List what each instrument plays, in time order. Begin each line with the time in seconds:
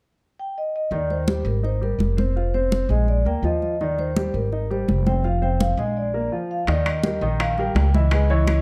0.39 vibraphone G5
0.58 vibraphone D#5
0.76 vibraphone D#5
0.91 upright bass D#2, grand piano D#3 D#4, vibraphone D5, high conga
1.10 vibraphone C5, high conga
1.27 grand piano G3 G4, high conga
1.45 upright bass G#1, vibraphone A#4, high conga
1.63 grand piano D#4 D#5, vibraphone C5, high conga
1.81 grand piano G3 G4, vibraphone A#4, high conga
1.99 upright bass F1, high conga
2.17 grand piano C4 C5, vibraphone C5, high conga
2.36 grand piano F4 F5, high conga
2.54 grand piano C4 C5, vibraphone C5, high conga
2.72 high conga
2.89 upright bass A#1, grand piano G#3 G#4, vibraphone D#5, high conga
3.08 vibraphone D5, high conga
3.25 upright bass D2, grand piano A#3 A#4, vibraphone G5, high conga
3.43 upright bass D#2, grand piano F3 F4, vibraphone D#5, high conga
3.62 vibraphone D#5, high conga
3.81 grand piano D#3 D#4, vibraphone D5, high conga
3.99 vibraphone C5, high conga
4.16 grand piano G3 G4, high conga
4.34 upright bass G#1, vibraphone A#4, high conga
4.52 grand piano D#4 D#5, high conga
4.70 grand piano G3 G4, vibraphone C5, high conga
4.88 upright bass F1, high conga
5.06 grand piano C4 C5, vibraphone G5, high conga
5.24 grand piano F4 F5, vibraphone F5, high conga
5.41 grand piano C4 C5, vibraphone G5, high conga
5.60 vibraphone F5, high conga
5.77 upright bass A#1, grand piano G#3 G#4, vibraphone D#5, high conga
5.97 vibraphone D5
6.14 grand piano A#3 A#4
6.32 grand piano F3 F4
6.51 vibraphone F5
6.67 upright bass D#2, grand piano D#3 D#4 D#5, vibraphone D5, high bongo, high conga, high timbale
6.86 high conga, high timbale
7.04 grand piano G3 G4 A#4, high bongo, high conga
7.21 upright bass A#1, grand piano D#3 D#4 D#5, high conga
7.40 vibraphone F5, high bongo, high conga, high timbale
7.51 vibraphone F5
7.58 grand piano G3 G4 A#4, vibraphone G5, high conga
7.75 upright bass C#2, high bongo, low bongo, high conga, high timbale, low timbale
7.94 grand piano E3 E4 E5, vibraphone D#5, high conga
8.11 grand piano G#3 G#4 B4, vibraphone D#5, high bongo, high conga, high timbale
8.30 grand piano E3 E4 C#5, high bongo, high conga
8.47 high bongo, high conga, high timbale